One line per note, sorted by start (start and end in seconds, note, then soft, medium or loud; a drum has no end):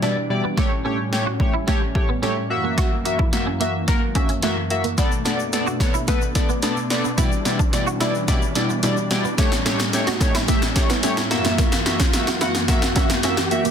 0.00 0.54 B2 medium
0.00 0.15 B2 medium
0.00 0.55 E3 medium
0.00 2.46 G3 medium
0.00 0.15 G3 medium
0.00 0.55 D4 medium
0.00 0.14 D4 medium
0.00 0.15 E4 medium
0.00 0.15 D5 loud
0.00 snare medium
0.00 riser medium
0.16 muted clean electric guitar stroke soft
0.30 0.43 B2 medium
0.30 0.43 G3 medium
0.30 0.43 E4 medium
0.30 0.43 D5 loud
0.44 0.55 B3 medium
0.57 2.48 A2 medium
0.57 0.70 A3 loud
0.57 0.69 A3 medium
0.57 2.48 C#4 medium
0.57 0.70 G4 loud
0.57 0.70 C#5 loud
0.57 kick loud
0.57 snare medium
0.71 muted clean electric guitar stroke soft
0.85 0.98 A3 medium
0.85 0.96 C#4 medium
0.85 0.98 G4 medium
0.85 0.98 C#5 loud
1.12 1.25 A3 medium
1.12 1.25 G4 medium
1.12 1.25 C#5 loud
1.12 snare medium
1.26 1.38 F#4 medium
1.40 1.53 A3 medium
1.40 1.53 G4 medium
1.40 1.53 C#5 loud
1.40 muted clean electric guitar stroke soft
1.40 kick medium
1.54 1.65 E4 medium
1.67 1.79 A3 medium
1.67 1.80 A3 loud
1.67 1.80 G4 loud
1.67 1.80 C#5 loud
1.67 kick medium
1.67 snare medium
1.81 muted clean electric guitar stroke soft
1.95 2.08 A3 medium
1.95 2.08 G4 medium
1.95 2.08 C#5 loud
1.95 kick loud
2.09 2.20 B3 medium
2.22 2.35 A3 loud
2.22 2.34 C#4 medium
2.22 2.35 G4 medium
2.22 2.35 C#5 loud
2.22 snare medium
2.36 muted clean electric guitar stroke soft
2.50 4.96 F#2 medium
2.50 4.95 E3 medium
2.50 2.94 A#3 medium
2.50 4.95 A#3 medium
2.50 2.94 F#4 medium
2.50 2.94 E5 loud
2.64 2.75 A#3 medium
2.78 2.89 F#4 medium
2.78 kick loud
2.78 snare medium
2.78 closed hi-hat loud
3.05 3.18 A#3 medium
3.05 3.18 F#4 medium
3.05 3.18 E5 medium
3.05 muted clean electric guitar stroke soft
3.05 closed hi-hat medium
3.19 3.30 E4 medium
3.19 kick loud
3.32 3.45 A#3 medium
3.32 3.45 F#4 medium
3.32 3.46 E5 loud
3.32 muted clean electric guitar stroke soft
3.32 snare medium
3.32 closed hi-hat medium
3.46 3.58 C#4 medium
3.60 3.72 A#3 medium
3.60 3.73 A#3 medium
3.60 3.73 F#4 medium
3.60 3.73 E5 loud
3.60 closed hi-hat medium
3.87 4.00 A#3 loud
3.87 4.00 F#4 loud
3.87 4.01 A#4 loud
3.87 muted clean electric guitar stroke soft
3.87 kick medium
3.87 snare medium
3.87 closed hi-hat medium
4.15 4.28 A#3 medium
4.15 4.27 C#4 medium
4.15 4.28 F#4 medium
4.15 4.28 E5 loud
4.15 kick medium
4.15 closed hi-hat medium
4.29 4.40 C#4 medium
4.29 closed hi-hat medium
4.42 4.54 A3 medium
4.42 4.55 A#3 loud
4.42 4.56 F#4 medium
4.42 4.56 E5 loud
4.42 snare medium
4.42 closed hi-hat loud
4.56 muted clean electric guitar stroke soft
4.70 4.83 A#3 medium
4.70 4.83 F#4 medium
4.70 4.83 E5 medium
4.70 closed hi-hat medium
4.84 4.96 A#3 medium
4.84 closed hi-hat medium
4.98 7.16 B2 medium
4.98 7.16 A3 medium
4.98 5.11 B3 loud
4.98 5.09 B3 medium
4.98 9.34 D4 medium
4.98 5.11 A4 loud
4.98 5.11 D5 loud
4.98 kick loud
4.98 snare medium
4.98 closed hi-hat medium
4.98 shaker medium
5.12 muted clean electric guitar stroke soft
5.12 shaker medium
5.25 5.38 B3 medium
5.25 5.37 D4 medium
5.25 5.38 A4 medium
5.25 5.38 D5 loud
5.25 snare medium
5.25 closed hi-hat medium
5.25 shaker soft
5.39 shaker soft
5.53 5.66 B3 medium
5.53 5.66 A4 medium
5.53 5.66 D5 loud
5.53 snare medium
5.53 closed hi-hat medium
5.53 shaker medium
5.67 5.78 F#4 medium
5.67 shaker soft
5.80 5.93 B3 medium
5.80 5.93 A4 medium
5.80 5.93 C#5 loud
5.80 muted clean electric guitar stroke soft
5.80 kick medium
5.80 snare medium
5.80 closed hi-hat medium
5.80 shaker medium
5.94 6.06 E4 medium
5.94 shaker soft
6.08 6.19 A3 medium
6.08 6.21 B3 loud
6.08 6.21 A4 loud
6.08 6.21 B4 loud
6.08 kick loud
6.08 snare medium
6.08 closed hi-hat medium
6.08 shaker medium
6.21 muted clean electric guitar stroke soft
6.21 shaker medium
6.35 6.48 B3 medium
6.35 6.48 A4 medium
6.35 6.48 D5 loud
6.35 kick medium
6.35 snare medium
6.35 closed hi-hat medium
6.35 shaker medium
6.49 6.61 B3 medium
6.49 shaker soft
6.62 6.76 B3 medium
6.62 6.74 D4 medium
6.62 6.76 A4 medium
6.62 6.76 D5 loud
6.62 snare medium
6.62 closed hi-hat medium
6.62 shaker medium
6.76 muted clean electric guitar stroke soft
6.76 shaker medium
6.90 7.03 B3 medium
6.90 7.03 A4 medium
6.90 7.03 D5 loud
6.90 snare medium
6.90 closed hi-hat medium
6.90 shaker soft
7.04 7.16 B3 medium
7.04 shaker soft
7.18 7.31 B2 loud
7.18 9.36 B2 medium
7.18 9.36 E3 medium
7.18 11.27 G3 medium
7.18 7.31 G3 loud
7.18 7.29 E4 medium
7.18 7.31 E4 loud
7.18 7.31 D5 loud
7.18 kick loud
7.18 snare medium
7.18 closed hi-hat medium
7.18 shaker medium
7.32 shaker medium
7.45 7.58 B2 medium
7.45 7.58 G3 medium
7.45 7.58 E4 medium
7.45 7.58 D5 medium
7.45 muted clean electric guitar stroke soft
7.45 snare medium
7.45 closed hi-hat medium
7.45 shaker soft
7.59 7.71 D4 medium
7.59 kick loud
7.59 shaker medium
7.73 7.86 B2 medium
7.73 7.86 G3 medium
7.73 7.86 E4 medium
7.73 7.86 D5 loud
7.73 muted clean electric guitar stroke soft
7.73 snare medium
7.73 closed hi-hat loud
7.73 shaker medium
7.87 7.98 F#4 medium
7.87 shaker medium
8.00 8.13 B2 medium
8.00 8.13 G3 medium
8.00 8.12 E4 medium
8.00 8.13 E4 medium
8.00 8.13 D5 loud
8.00 snare loud
8.00 closed hi-hat medium
8.00 shaker medium
8.15 shaker soft
8.28 8.41 B2 loud
8.28 8.41 G3 loud
8.28 8.41 E4 loud
8.28 8.41 D5 loud
8.28 muted clean electric guitar stroke soft
8.28 kick medium
8.28 snare medium
8.28 closed hi-hat loud
8.28 shaker medium
8.42 shaker medium
8.55 8.68 B2 medium
8.55 8.68 G3 medium
8.55 8.67 D4 medium
8.55 8.68 E4 medium
8.55 8.68 D5 loud
8.55 snare medium
8.55 closed hi-hat medium
8.55 shaker soft
8.69 8.81 B3 medium
8.69 shaker soft
8.83 8.96 B2 loud
8.83 8.96 G3 medium
8.83 8.95 D4 medium
8.83 8.96 E4 medium
8.83 8.96 D5 loud
8.83 snare loud
8.83 closed hi-hat loud
8.83 shaker medium
8.97 muted clean electric guitar stroke soft
8.97 shaker medium
9.11 9.23 B2 medium
9.11 9.23 G3 medium
9.11 9.23 E4 medium
9.11 9.24 D5 loud
9.11 snare loud
9.11 closed hi-hat medium
9.11 shaker soft
9.24 9.36 B3 medium
9.24 shaker soft
9.38 11.29 A2 medium
9.38 9.51 A3 loud
9.38 9.50 A3 medium
9.38 11.29 C#4 medium
9.38 9.51 G4 loud
9.38 9.51 C#5 loud
9.38 kick loud
9.38 snare loud
9.38 closed hi-hat loud
9.38 shaker medium
9.52 muted clean electric guitar stroke soft
9.52 snare loud
9.52 shaker medium
9.66 9.78 A3 medium
9.66 9.77 C#4 medium
9.66 9.79 G4 medium
9.66 9.79 C#5 loud
9.66 snare loud
9.66 closed hi-hat medium
9.66 shaker soft
9.80 snare loud
9.80 shaker medium
9.93 10.06 A3 medium
9.93 10.06 G4 medium
9.93 10.06 C#5 loud
9.93 snare loud
9.93 closed hi-hat loud
9.93 shaker medium
10.07 10.19 F#4 medium
10.07 snare loud
10.07 shaker soft
10.21 10.33 A3 medium
10.21 10.34 G4 medium
10.21 10.34 C#5 loud
10.21 muted clean electric guitar stroke soft
10.21 kick medium
10.21 snare loud
10.21 closed hi-hat medium
10.21 shaker medium
10.35 10.46 E4 medium
10.35 snare loud
10.35 shaker medium
10.48 10.61 A3 loud
10.48 10.60 A3 medium
10.48 10.61 G4 loud
10.48 10.61 E5 loud
10.48 kick medium
10.48 snare loud
10.48 closed hi-hat medium
10.48 shaker medium
10.62 muted clean electric guitar stroke soft
10.62 snare loud
10.62 shaker medium
10.76 10.88 A3 medium
10.76 10.89 G4 medium
10.76 10.89 C#5 loud
10.76 kick medium
10.76 snare loud
10.76 closed hi-hat medium
10.76 shaker medium
10.90 11.01 B3 medium
10.90 snare loud
10.90 shaker medium
11.03 11.16 A3 loud
11.03 11.15 C#4 medium
11.03 11.16 G4 medium
11.03 11.16 C#5 loud
11.03 snare loud
11.03 closed hi-hat loud
11.03 shaker medium
11.17 muted clean electric guitar stroke soft
11.17 snare loud
11.17 shaker medium
11.31 13.71 F#2 medium
11.31 13.71 E3 medium
11.31 11.75 A#3 medium
11.31 13.71 A#3 medium
11.31 11.75 F#4 medium
11.31 11.75 E5 loud
11.31 snare loud
11.31 closed hi-hat medium
11.31 shaker soft
11.45 11.56 A#3 medium
11.45 snare loud
11.45 shaker soft
11.58 11.70 A#3 medium
11.58 kick loud
11.58 snare loud
11.58 closed hi-hat loud
11.58 shaker medium
11.72 snare loud
11.72 shaker medium
11.86 11.99 A#3 medium
11.86 11.99 F#4 medium
11.86 11.99 E5 loud
11.86 muted clean electric guitar stroke soft
11.86 snare loud
11.86 closed hi-hat medium
11.86 shaker soft
12.00 12.11 C#4 medium
12.00 kick loud
12.00 snare loud
12.00 shaker medium
12.13 12.26 A#3 medium
12.13 12.26 F#4 medium
12.13 12.26 E5 loud
12.13 muted clean electric guitar stroke soft
12.13 snare loud
12.13 closed hi-hat loud
12.13 shaker medium
12.27 12.39 F#4 medium
12.27 snare loud
12.27 shaker soft
12.41 12.54 A#3 medium
12.41 12.52 E4 medium
12.41 12.54 F#4 medium
12.41 12.54 F#5 loud
12.41 snare loud
12.41 closed hi-hat medium
12.41 shaker medium
12.55 snare loud
12.55 shaker medium
12.68 12.81 A#3 loud
12.68 12.81 F#4 loud
12.68 12.81 E5 loud
12.68 muted clean electric guitar stroke soft
12.68 kick medium
12.68 snare loud
12.68 closed hi-hat loud
12.68 shaker medium
12.82 snare loud
12.82 shaker medium
12.96 13.09 A#3 medium
12.96 13.08 C#4 medium
12.96 13.09 F#4 medium
12.96 13.09 E5 loud
12.96 kick loud
12.96 snare loud
12.96 closed hi-hat medium
12.96 shaker medium
13.10 13.21 A#3 medium
13.10 snare loud
13.10 closed hi-hat medium
13.10 shaker medium
13.23 13.36 A#3 loud
13.23 13.35 C#4 medium
13.23 13.36 F#4 medium
13.23 13.36 E5 loud
13.23 snare loud
13.23 closed hi-hat loud
13.23 shaker medium
13.37 muted clean electric guitar stroke soft
13.37 snare loud
13.37 shaker medium
13.51 13.64 A#3 medium
13.51 13.64 F#4 medium
13.51 13.64 E5 loud
13.51 closed hi-hat medium
13.51 shaker soft
13.65 13.71 A#3 medium
13.65 closed hi-hat medium
13.65 shaker medium